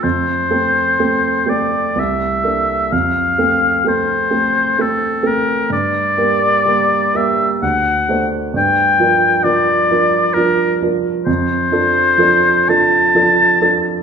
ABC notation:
X:1
M:3/4
L:1/8
Q:1/4=64
K:F
V:1 name="Oboe"
c3 d e2 | f2 c2 A B | d3 e ^f z | g2 d2 B z |
[K:Ddor] c3 a3 |]
V:2 name="Grand piano"
F,, [A,CA] [A,CA] [A,CA] C,, [B,DA] | F,, [A,CA] [A,CA] [A,CA] [A,CA] [A,CA] | G,, [G,B,B] [G,B,B] [G,B,B] D,, [A,Dc] | G,, [F,DB] [F,DB] [F,DB] [F,DB] [F,DB] |
[K:Ddor] F,, [F,DA] [F,DA] [F,DA] [F,DA] [F,DA] |]